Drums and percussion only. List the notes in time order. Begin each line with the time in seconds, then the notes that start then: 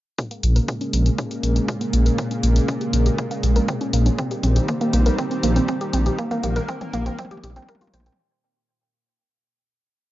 0.18 kick, closed hi-hat, mid tom
0.31 closed hi-hat
0.43 closed hi-hat
0.56 closed hi-hat
0.68 kick, closed hi-hat, mid tom
0.81 closed hi-hat
0.93 closed hi-hat
1.06 closed hi-hat
1.18 kick, closed hi-hat, mid tom
1.31 closed hi-hat
1.43 closed hi-hat
1.56 closed hi-hat
1.68 kick, closed hi-hat, mid tom
1.81 closed hi-hat
1.93 closed hi-hat
2.06 closed hi-hat
2.18 kick, closed hi-hat, mid tom
2.31 closed hi-hat
2.43 closed hi-hat
2.56 closed hi-hat
2.68 kick, closed hi-hat, mid tom
2.81 closed hi-hat
2.93 closed hi-hat
3.06 closed hi-hat
3.18 kick, closed hi-hat, mid tom
3.31 closed hi-hat
3.43 closed hi-hat
3.56 closed hi-hat
3.68 kick, closed hi-hat, mid tom
3.81 closed hi-hat
3.93 closed hi-hat
4.06 closed hi-hat
4.18 kick, closed hi-hat, mid tom
4.31 closed hi-hat
4.43 closed hi-hat, mid tom
4.56 closed hi-hat
4.68 kick, closed hi-hat, mid tom
4.81 closed hi-hat
4.93 closed hi-hat, mid tom
5.06 closed hi-hat
5.18 kick, closed hi-hat, mid tom
5.31 closed hi-hat
5.43 closed hi-hat, mid tom
5.56 closed hi-hat
5.68 kick, closed hi-hat, mid tom
5.81 closed hi-hat
5.93 closed hi-hat, mid tom
6.06 closed hi-hat
6.19 kick, closed hi-hat, mid tom
6.31 closed hi-hat, mid tom
6.43 closed hi-hat, mid tom
6.56 closed hi-hat, mid tom
6.68 kick, closed hi-hat, mid tom
6.81 closed hi-hat, mid tom
6.93 closed hi-hat, mid tom
7.06 closed hi-hat, mid tom
7.19 kick, closed hi-hat, mid tom
7.25 mid tom
7.31 closed hi-hat, mid tom
7.37 mid tom
7.44 closed hi-hat, mid tom
7.50 mid tom
7.56 closed hi-hat, mid tom
7.62 mid tom
7.69 kick, closed hi-hat, mid tom
7.75 mid tom
7.81 closed hi-hat, mid tom
7.87 mid tom
7.94 closed hi-hat, mid tom
8.00 mid tom
8.06 closed hi-hat, mid tom
8.12 mid tom